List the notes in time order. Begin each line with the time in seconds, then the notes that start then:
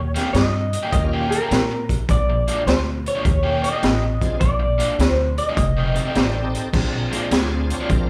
Already playing: D#2 C#5
0.15 D#3 A#3 C#4 G4, snare, closed hi-hat
0.33 G2 D#5, muted overdriven electric guitar stroke, snare, closed hi-hat
0.73 closed hi-hat
0.83 D#3 A#3 C#4 G4
0.91 D#2 A#3 C#4 F4 G4 D#5, muted overdriven electric guitar stroke, kick, closed hi-hat
1.13 D#3 A#3 C#4 G4
1.31 A#4, closed hi-hat
1.41 D#3 A#3 C#4 G4
1.51 A#2, snare, closed hi-hat
1.71 muted overdriven electric guitar stroke
1.89 kick, closed hi-hat
2.09 A#1 D5, kick, closed hi-hat
2.30 muted overdriven electric guitar stroke
2.48 A#2 F3 G#3 D4, closed hi-hat
2.67 D2 C5, muted overdriven electric guitar stroke, snare, closed hi-hat
3.06 C#5, closed hi-hat
3.15 A#2 F3 G#3 D4
3.25 D#2, muted overdriven electric guitar stroke, kick, closed hi-hat
3.43 D#3 A#3 C#4 G4
3.64 D#5, closed hi-hat
3.72 D#3 A#3 C#4 G4
3.83 A1, snare, closed hi-hat
4.02 muted overdriven electric guitar stroke
4.21 C4 D4 F4 G#4, kick, closed hi-hat
4.40 A#1 D5, kick, closed hi-hat
4.60 muted overdriven electric guitar stroke
4.78 A#2 F3 G#3 D4, closed hi-hat
4.99 D2, muted overdriven electric guitar stroke, snare, closed hi-hat
5.07 C5
5.38 D#5, closed hi-hat
5.49 A#2 F3 G#3 D4
5.57 F1, muted overdriven electric guitar stroke, kick, closed hi-hat
5.77 F2 D#3 A3 C4
5.95 C4 D#4 G4 A4, closed hi-hat
6.06 F2 D#3 A3 C4
6.12 A1 D5, closed hi-hat
6.16 snare
6.34 muted overdriven electric guitar stroke
6.55 closed hi-hat
6.73 A#1 C4 D4 F4 G#4, kick, snare, crash
6.93 muted overdriven electric guitar stroke
7.11 A#2 F3 G#3 D4, closed hi-hat
7.31 D2 C#5, muted overdriven electric guitar stroke, snare, closed hi-hat
7.54 G#4
7.70 C#5, closed hi-hat
7.81 A#2 F3 G#3 D4
7.89 A#1, muted overdriven electric guitar stroke, kick, closed hi-hat
7.94 A#4